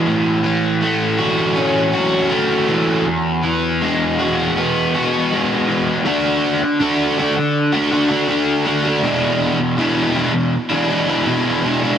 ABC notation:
X:1
M:4/4
L:1/16
Q:1/4=80
K:Dlyd
V:1 name="Overdriven electric guitar"
A,,2 E,2 A,2 F2 C2 F2 A,2 E,2 | E,,2 E,2 G,2 F2 B,2 F2 G,2 E,2 | [D,A,DF]4 [D,A,DF]2 [D,A,DF]3 [A,DF] [D,A,DF] [A,DF] [D,A,DF]2 [D,A,DF] [A,DF] | [E,,B,,E,G,DE]4 [E,,B,,E,G,DE]2 [E,G,DE]3 [E,G,DE] [E,G,DE] [E,G,DE] [E,,B,,E,G,DE]2 [E,G,DE] [E,G,DE] |]